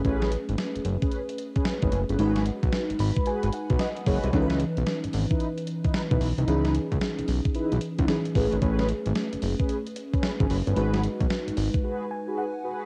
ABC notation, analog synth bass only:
X:1
M:4/4
L:1/16
Q:"Swing 16ths" 1/4=112
K:C#m
V:1 name="Analog synth bass" clef=bass
A,,,3 G,,, z F,,, F,,, z6 G,,, F,,, =G,,, | G,,,3 B,,, z G,,, G,,, z2 G,,, z B,,, z2 F,,, ^B,,, | C,,3 B,,, z G,,, G,,, z6 B,,, B,,, ^B,,, | C,,3 C,, z B,,, B,,, z2 B,,, z C,, z2 A,,, G,,, |
A,,,3 G,,, z F,,, F,,, z6 G,,, F,,, =G,,, | G,,,3 B,,, z G,,, G,,, z8 z |]